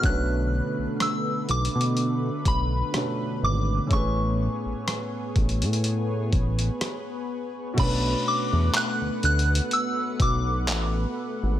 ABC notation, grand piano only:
X:1
M:4/4
L:1/8
Q:"Swing 16ths" 1/4=62
K:Bdor
V:1 name="Grand piano"
[B,,A,CDB]6 [B,,A,CDB]2 | [A,,A,CGB]8 | [B,,A,CDB]8 |]